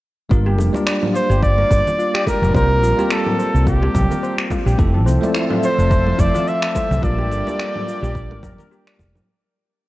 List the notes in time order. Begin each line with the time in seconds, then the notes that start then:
0.29 G1 G3 A#3 D4 F4 A#4, kick, shaker
0.46 G4
0.58 F1, high bongo, shaker
0.73 G3 A#3 D4 F4 A#4 D5, high conga, shaker
0.86 D5, finger snap, shaker
1.03 low conga
1.14 F4 C5, shaker
1.30 G1 G4, shaker
1.43 D5, kick, shaker
1.58 A#4, high conga
1.71 G1 D5, kick, high bongo, shaker
1.87 low conga, shaker
1.99 F4, shaker
2.14 G4, finger snap
2.27 A#4, kick, high bongo, high conga, shaker
2.42 F1 A#4, low conga, shaker
2.54 C2 G3 A#3 C4 F4 A#4 C5, kick, shaker
2.82 A#1 F4, shaker
2.97 G3 A#3 C4 F4 G4 D5, high conga, shaker
3.11 A4, finger snap, shaker
3.27 A#4, low conga
3.39 C5, shaker
3.54 C2, shaker
3.67 F4 G4, kick, shaker
3.82 G4, high bongo, high conga
3.95 C2, kick, low conga, shaker
4.11 A#4, low conga, shaker
4.23 C5, shaker
4.38 finger snap
4.50 F4, kick, high bongo, high conga, shaker
4.66 A#1 G4, shaker
4.78 F1 F3 A3 C4 E4 A4 E5, kick, shaker
4.94 A4
5.06 C2 C5, high bongo, shaker
5.20 F3 A3 C4 D5 E5, high conga, shaker
5.34 E4, finger snap, shaker
5.50 F4, low conga
5.63 C5, shaker
5.78 F1 A4, shaker
5.90 C5, kick, shaker
6.07 high conga
6.18 F1 E4 D5, kick, high bongo, shaker
6.34 F4, low conga, shaker
6.48 E5, shaker
6.62 A4, finger snap
6.75 C5, kick, high bongo, high conga, shaker
6.91 C2, low conga, shaker
7.02 A#1 G3 A#3 D4 F4 G4 A#4 D5, kick, shaker
7.18 G4
7.30 G1, high bongo, shaker
7.45 G3 A#3 D4 F4 A#4 D5, high conga, shaker
7.59 D5, finger snap, shaker
7.76 low conga
7.87 F4, shaker
8.03 A#1 G4, shaker
8.15 kick, shaker
8.31 A#4, high bongo, high conga
8.43 F1 A#4, kick, low conga, shaker
8.59 A#4, low conga, shaker
8.72 G4, shaker
8.87 D5, finger snap
8.99 F1, kick, high bongo, high conga, shaker
9.15 A#4, low conga, shaker